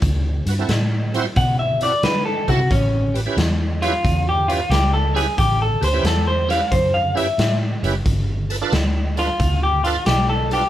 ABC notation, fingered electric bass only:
X:1
M:4/4
L:1/8
Q:"Swing" 1/4=90
K:Ador
V:1 name="Fingered electric bass" clef=bass
D,, G,, A,,2 B,,2 D, C, | A,,,2 E,,2 E,,2 ^C,,2 | A,,, D,, E,,2 F,,2 A,, F,,, | G,,,2 D,,2 D,,2 B,,,2 |]